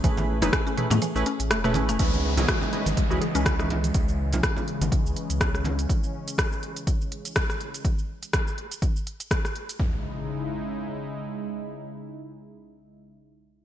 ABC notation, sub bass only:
X:1
M:4/4
L:1/16
Q:"Swing 16ths" 1/4=123
K:C#m
V:1 name="Sub bass" clef=bass
A,,,3 E,,, z3 A,, z A,,, z A,,, E,,,2 A,,, E,,, | C,,3 B,,, z3 G,,, z C,, z C,,4- C,, | C,,3 B,,, z3 G,,, z C,, z C,,4- C,, | z16 |
z16 | z16 | z16 |]